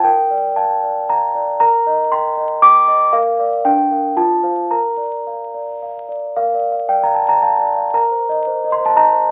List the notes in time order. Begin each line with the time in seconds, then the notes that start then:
0.04 A#4 G5
0.30 D5
0.56 F5 A5
0.83 D5
1.09 F5 A#5
1.35 D5
1.60 A#4 A#5
1.87 D#5
2.12 G5 C6
2.37 D#5
2.62 G5 D6
2.88 D#5
3.13 A#4 F5
3.39 D5 F5
3.65 D4 G5
3.91 A#4 F5
4.17 F4 A5
4.43 C5 F5
4.71 A#4 A#5
4.97 D5
5.27 F5
5.54 D5
5.82 F5
6.09 D5
6.36 A#4 F5
6.54 D5
6.72 F5
6.89 D5 G5
7.03 F5 A#5
7.15 A5
7.24 D5
7.29 A#5
7.42 F5 A5
7.59 D5
7.77 F5
7.94 A#4 A#5
8.11 C5
8.29 D#5
8.47 C5
8.64 D#5
8.72 C6
8.81 C5
8.86 A5
8.96 D#5 A#5
9.13 C5